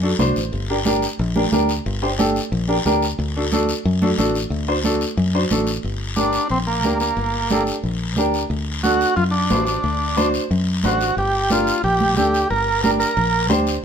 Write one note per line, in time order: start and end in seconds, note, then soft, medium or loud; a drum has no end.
0.00 0.13 F#2 loud
0.00 0.08 D4 medium
0.00 0.09 F#4 medium
0.00 0.09 A4 medium
0.19 0.34 C2 medium
0.19 0.36 D4 medium
0.19 0.37 F#4 medium
0.19 0.37 C5 medium
0.19 high conga medium
0.19 short guiro medium
0.36 0.51 A1 medium
0.36 short guiro medium
0.52 1.06 G1 loud
0.52 long guiro medium
0.69 0.75 D4 medium
0.69 0.76 G4 medium
0.69 0.76 A#4 medium
0.85 1.03 D4 medium
0.85 1.03 G4 medium
0.85 1.04 A#4 medium
0.85 high conga medium
0.85 short guiro medium
1.02 short guiro medium
1.19 1.46 A#1 medium
1.19 long guiro medium
1.35 1.41 D4 medium
1.35 1.42 G4 medium
1.35 1.42 A#4 medium
1.35 high conga medium
1.52 1.79 D2 medium
1.52 1.69 D4 medium
1.52 1.70 G4 medium
1.52 1.70 A#4 medium
1.52 high conga medium
1.52 short guiro medium
1.69 short guiro medium
1.86 2.39 G1 loud
1.86 long guiro medium
2.02 2.08 D4 medium
2.02 2.08 G4 medium
2.02 2.08 C5 medium
2.18 2.36 D4 medium
2.18 2.36 G4 medium
2.18 2.36 A4 medium
2.18 high conga medium
2.18 short guiro medium
2.36 short guiro medium
2.52 2.79 A#1 loud
2.52 long guiro medium
2.68 2.74 D4 medium
2.68 2.74 G4 medium
2.68 2.75 A#4 medium
2.85 3.12 D2 medium
2.85 3.03 D4 medium
2.85 3.03 G4 medium
2.85 3.03 A#4 medium
2.85 high conga medium
2.85 short guiro medium
3.02 short guiro medium
3.19 3.72 D2 loud
3.19 long guiro medium
3.36 3.41 D4 medium
3.36 3.42 F#4 medium
3.36 3.42 A4 medium
3.52 3.70 D4 medium
3.52 3.70 F#4 medium
3.52 3.70 A4 medium
3.52 high conga medium
3.52 short guiro medium
3.69 short guiro medium
3.85 4.12 F#2 loud
3.85 long guiro medium
4.01 4.07 D4 medium
4.01 4.07 F#4 medium
4.01 4.08 A4 medium
4.01 high conga medium
4.17 4.45 A1 medium
4.17 4.35 D4 medium
4.17 4.36 F#4 medium
4.17 4.36 A4 medium
4.17 high conga medium
4.17 short guiro medium
4.35 short guiro medium
4.50 5.04 D2 loud
4.50 long guiro medium
4.68 4.74 D4 medium
4.68 4.74 F#4 medium
4.68 4.74 C5 medium
4.84 5.02 D4 medium
4.84 5.02 F#4 medium
4.84 5.02 A4 medium
4.84 high conga medium
4.84 short guiro medium
5.01 short guiro medium
5.17 5.44 F#2 loud
5.17 long guiro medium
5.34 5.40 D4 medium
5.34 5.40 F#4 medium
5.34 5.41 C5 medium
5.51 5.78 A1 medium
5.51 5.68 D4 medium
5.51 5.69 F#4 medium
5.51 5.69 A4 medium
5.51 high conga medium
5.51 short guiro medium
5.67 short guiro medium
5.83 6.37 G1 medium
5.83 long guiro medium
6.16 6.48 D4 medium
6.16 6.41 D4 medium
6.16 6.41 G4 medium
6.16 6.41 A#4 medium
6.16 high conga medium
6.16 short guiro medium
6.33 short guiro medium
6.50 6.84 A#1 medium
6.50 6.58 C4 medium
6.50 long guiro medium
6.67 6.98 A#3 medium
6.83 7.10 D2 medium
6.83 7.07 D4 medium
6.83 7.08 G4 medium
6.83 7.08 A#4 medium
6.83 high conga medium
6.83 short guiro medium
7.00 7.63 A#3 medium
7.00 short guiro medium
7.17 7.70 G1 medium
7.17 long guiro medium
7.50 7.74 D4 medium
7.50 7.74 G4 medium
7.50 7.74 A4 medium
7.50 high conga medium
7.50 short guiro medium
7.67 short guiro medium
7.83 8.17 A#1 medium
7.83 long guiro medium
8.16 8.44 D2 medium
8.16 8.41 D4 medium
8.16 8.41 G4 medium
8.16 8.41 A#4 medium
8.16 high conga medium
8.16 short guiro medium
8.34 short guiro medium
8.50 9.03 D2 medium
8.50 long guiro medium
8.83 9.07 D4 medium
8.83 9.15 F#4 medium
8.83 9.07 F#4 medium
8.83 9.08 A4 medium
8.83 high conga medium
8.83 short guiro medium
9.01 short guiro medium
9.16 9.52 F#2 medium
9.16 9.24 F4 medium
9.16 long guiro medium
9.31 9.64 D4 medium
9.50 9.77 A1 medium
9.50 9.74 D4 medium
9.50 9.74 F#4 medium
9.50 9.74 C5 medium
9.50 high conga medium
9.50 short guiro medium
9.65 10.29 D4 medium
9.65 short guiro medium
9.84 10.37 D2 medium
9.84 long guiro medium
10.16 10.40 D4 medium
10.16 10.40 F#4 medium
10.16 10.41 C5 medium
10.16 high conga medium
10.16 short guiro medium
10.34 short guiro medium
10.51 10.85 F#2 medium
10.51 long guiro medium
10.83 11.10 A1 medium
10.83 11.07 D4 medium
10.83 11.07 F#4 medium
10.83 11.15 F#4 medium
10.83 11.08 C5 medium
10.83 high conga medium
10.83 short guiro medium
11.01 short guiro medium
11.17 11.70 G1 medium
11.17 11.52 G4 medium
11.17 long guiro medium
11.50 11.74 D4 medium
11.50 11.82 F4 medium
11.50 11.74 G4 medium
11.50 11.74 A#4 medium
11.50 high conga medium
11.50 short guiro medium
11.67 short guiro medium
11.84 12.17 A#1 medium
11.84 12.15 G4 medium
11.84 long guiro medium
12.00 high conga medium
12.17 12.43 D2 medium
12.17 12.41 D4 medium
12.17 12.48 G4 medium
12.17 12.41 G4 medium
12.17 12.41 A4 medium
12.17 high conga medium
12.17 short guiro medium
12.34 short guiro medium
12.50 13.04 G1 medium
12.50 12.81 A#4 medium
12.50 long guiro medium
12.83 13.07 D4 medium
12.83 13.07 G4 medium
12.83 12.91 A#4 medium
12.83 13.07 A#4 medium
12.83 high conga medium
12.83 short guiro medium
13.00 13.46 A#4 medium
13.00 short guiro medium
13.17 13.50 A#1 medium
13.17 long guiro medium
13.49 13.77 D2 medium
13.49 13.73 D4 medium
13.49 13.73 G4 medium
13.49 13.73 C5 medium
13.49 high conga medium
13.49 short guiro medium
13.67 short guiro medium